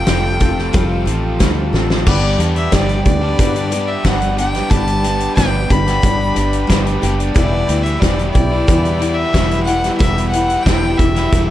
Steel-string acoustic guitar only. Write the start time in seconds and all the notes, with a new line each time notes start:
0.07 G3 C4 F4 A4
0.40 C4 F4 A4
0.73 F3 G3 C4 F4 A4
1.06 C4 F4 A4
1.39 G3 C4 F4 A4
1.73 C4 F4 A4
2.06 G2 D3 G3 B3 D4 G4
2.39 G3 B3 D4 G4
2.73 G3 B3 D4 G4
3.06 G3 B3 D4 G4
3.39 G2 D3 G3 B3 D4 G4
3.72 G3 B3 D4 G4
4.05 G3 B3 D4 G4
4.38 G3 B3 D4 G4
4.70 G2 D3 G3 B3 D4 G4
5.03 G3 B3 D4 G4
5.35 G3 B3 D4 G4
5.69 G3 B3 D4 G4
6.02 G2 D3 G3 B3 D4 G4
6.35 G3 B3 D4 G4
6.67 G3 B3 D4 G4
7.02 G3 B3 D4 G4
7.35 E2 B2 E3 G3 E4 G4
7.68 E3 G3 E4 G4
8.01 E3 G3 E4 G4
8.34 E3 G3 E4 G4
8.67 E2 B2 E3 G3 E4 G4
8.99 E3 G3 E4 G4
9.33 E3 G3 E4 G4
9.66 E3 G3 E4 G4
9.99 E2 B2 E3 G3 E4 G4
10.33 E3 G3 E4 G4
10.66 E3 G3 E4 G4
11.00 E3 G3 E4 G4
11.34 E2 B2 E3 G3 E4 G4